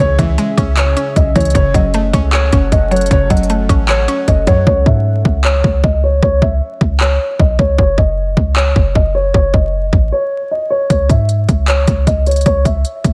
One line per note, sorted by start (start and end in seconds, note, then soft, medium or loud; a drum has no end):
0.00 0.18 C#2 loud
0.00 0.97 C#3 loud
0.00 1.52 C#3 medium
0.00 0.18 E3 medium
0.00 0.38 C#4 medium
0.00 1.51 C#4 medium
0.00 1.52 G#4 medium
0.00 0.16 C#5 loud
0.00 0.19 C#5 loud
0.00 1.52 E5 medium
0.19 0.37 C#2 loud
0.19 1.16 E3 medium
0.19 0.74 E5 medium
0.19 kick medium
0.19 closed hi-hat medium
0.38 1.36 G#3 medium
0.38 closed hi-hat medium
0.57 0.95 C#2 loud
0.57 0.95 C#4 medium
0.57 kick loud
0.57 closed hi-hat medium
0.77 1.55 C#5 loud
0.77 1.14 C#5 medium
0.77 clap loud
0.77 closed hi-hat medium
0.97 1.55 C#4 medium
0.97 closed hi-hat medium
1.16 1.35 B1 loud
1.16 1.32 D#5 medium
1.16 kick medium
1.16 closed hi-hat medium
1.36 1.54 C#2 loud
1.36 1.55 E3 medium
1.36 1.52 C#5 medium
1.36 kick loud
1.36 closed hi-hat soft
1.40 closed hi-hat medium
1.45 closed hi-hat medium
1.50 closed hi-hat medium
1.55 1.74 F#1 loud
1.55 2.52 C#3 medium
1.55 4.64 F#3 medium
1.55 4.64 C#4 medium
1.55 4.64 A4 medium
1.55 1.71 C#5 loud
1.55 4.64 F#5 medium
1.55 kick loud
1.55 closed hi-hat medium
1.74 2.12 F#1 loud
1.74 2.72 F#3 medium
1.74 2.29 D#5 medium
1.74 kick medium
1.74 closed hi-hat medium
1.94 2.92 A3 medium
1.94 closed hi-hat medium
2.13 2.51 C#2 loud
2.13 2.51 C#4 medium
2.13 kick loud
2.13 closed hi-hat medium
2.33 2.70 C#5 medium
2.33 3.30 C#5 loud
2.33 clap loud
2.33 closed hi-hat medium
2.52 2.71 F#1 loud
2.52 3.50 C#4 medium
2.52 kick loud
2.52 closed hi-hat medium
2.72 3.09 F#1 loud
2.72 2.88 D#5 medium
2.72 kick loud
2.72 closed hi-hat medium
2.91 3.29 F#3 medium
2.91 3.08 C#5 medium
2.91 closed hi-hat soft
2.96 closed hi-hat medium
3.01 closed hi-hat medium
3.06 closed hi-hat medium
3.11 3.30 F#1 loud
3.11 4.08 C#3 loud
3.11 3.27 C#5 loud
3.11 kick loud
3.11 closed hi-hat medium
3.30 3.68 F#1 loud
3.30 4.28 F#3 medium
3.30 kick medium
3.30 closed hi-hat medium
3.37 closed hi-hat medium
3.43 closed hi-hat medium
3.50 4.47 A3 medium
3.50 closed hi-hat medium
3.69 4.07 A1 loud
3.69 4.07 C#4 medium
3.69 kick medium
3.69 closed hi-hat medium
3.89 4.67 C#5 loud
3.89 4.25 C#5 medium
3.89 clap loud
3.89 closed hi-hat medium
4.08 4.67 C#4 medium
4.08 closed hi-hat medium
4.28 4.46 F#1 loud
4.28 4.44 D#5 medium
4.28 kick medium
4.28 closed hi-hat medium
4.47 4.66 F#2 loud
4.47 4.67 F#3 medium
4.47 4.63 C#5 medium
4.47 kick loud
4.47 closed hi-hat medium
4.67 4.85 C#2 loud
4.67 4.83 C#5 loud
4.67 kick loud
4.86 5.24 G#2 loud
4.86 5.41 E5 medium
4.86 kick medium
5.25 5.63 C#2 loud
5.25 kick loud
5.44 5.81 C#5 medium
5.44 clap loud
5.64 5.83 C#2 loud
5.64 kick loud
5.84 6.21 C#2 loud
5.84 6.00 D#5 medium
5.84 kick medium
6.03 6.20 C#5 medium
6.23 6.41 C#2 loud
6.23 6.39 C#5 loud
6.23 kick loud
6.42 6.61 C#2 loud
6.42 6.97 E5 medium
6.42 kick medium
6.81 7.18 C#2 loud
6.81 kick medium
7.00 7.37 C#5 medium
7.00 clap loud
7.39 7.58 B1 loud
7.39 7.56 D#5 medium
7.39 kick medium
7.59 7.78 C#2 loud
7.59 7.75 C#5 medium
7.59 kick loud
7.78 7.97 F#1 loud
7.78 7.95 C#5 loud
7.78 kick loud
7.98 8.35 F#1 loud
7.98 kick medium
8.37 8.74 C#2 loud
8.37 kick medium
8.56 8.93 C#5 medium
8.56 clap loud
8.76 8.95 F#1 loud
8.76 kick loud
8.95 9.33 F#1 loud
8.95 9.12 D#5 medium
8.95 kick medium
9.15 9.31 C#5 medium
9.34 9.53 F#1 loud
9.34 9.51 C#5 loud
9.34 kick loud
9.53 9.91 F#1 loud
9.53 10.09 D#5 medium
9.53 kick medium
9.93 10.11 A1 loud
9.93 kick medium
10.12 10.49 C#5 medium
10.51 10.68 D#5 medium
10.70 10.87 C#5 medium
10.90 11.09 C#2 loud
10.90 11.06 C#5 loud
10.90 kick loud
10.90 closed hi-hat medium
11.09 11.47 G#2 loud
11.09 11.65 E5 medium
11.09 kick medium
11.09 closed hi-hat medium
11.29 closed hi-hat medium
11.49 11.86 C#2 loud
11.49 kick loud
11.49 closed hi-hat medium
11.68 12.05 C#5 medium
11.68 clap loud
11.68 closed hi-hat medium
11.87 12.06 C#2 loud
11.87 kick loud
11.87 closed hi-hat medium
12.07 12.44 C#2 loud
12.07 12.23 D#5 medium
12.07 kick loud
12.07 closed hi-hat medium
12.26 12.43 C#5 medium
12.26 closed hi-hat soft
12.31 closed hi-hat medium
12.36 closed hi-hat medium
12.41 closed hi-hat medium
12.46 12.65 C#2 loud
12.46 12.62 C#5 loud
12.46 kick loud
12.46 closed hi-hat medium
12.65 12.84 C#2 loud
12.65 13.13 E5 medium
12.65 kick medium
12.65 closed hi-hat medium
12.85 closed hi-hat medium
13.04 13.13 C#2 loud
13.04 kick medium
13.04 closed hi-hat medium